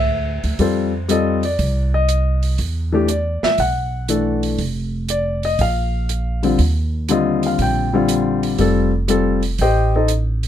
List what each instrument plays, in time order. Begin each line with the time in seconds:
Already playing: upright bass D2, grand piano E5
0.44 upright bass D2, open hi-hat
0.59 upright bass F2, grand piano G3 C4 F4 A4 C5, kick, open hi-hat
1.08 grand piano G3 C4 F4 A4 D#5, closed hi-hat
1.43 grand piano D5, open hi-hat
1.59 upright bass C2, kick, open hi-hat
1.94 grand piano D#5
2.09 closed hi-hat
2.43 open hi-hat
2.58 upright bass E2, kick, open hi-hat
2.92 grand piano E3 A3 D4 G4
3.08 grand piano D5, closed hi-hat
3.43 grand piano E5, muted upright bass stroke, snare
3.58 upright bass B1, grand piano F#5, kick, open hi-hat
4.08 grand piano E3 A3 D4 A4, closed hi-hat
4.43 open hi-hat
4.58 upright bass F1, kick, open hi-hat
5.09 grand piano D5, closed hi-hat
5.43 grand piano D#5, open hi-hat
5.59 upright bass A#1, grand piano F5, kick, open hi-hat
6.09 closed hi-hat
6.43 grand piano D3 G3 C4 F4, open hi-hat
6.59 upright bass D#2, kick, open hi-hat
7.08 grand piano D3 G3 C4 F4 D#5, closed hi-hat
7.43 grand piano F5, open hi-hat
7.59 upright bass A#1, grand piano G5, kick, open hi-hat
7.93 grand piano D3 G3 C4 F4
8.09 closed hi-hat
8.43 open hi-hat
8.58 upright bass F1, grand piano G3 C4 F4 A4, kick, open hi-hat
9.08 grand piano G3 C4 F4 A4, closed hi-hat
9.43 open hi-hat
9.58 upright bass A1, grand piano G4 C5 D#5 G5, kick, open hi-hat
9.96 grand piano D#4 A4 C5 D#5
10.08 closed hi-hat
10.43 open hi-hat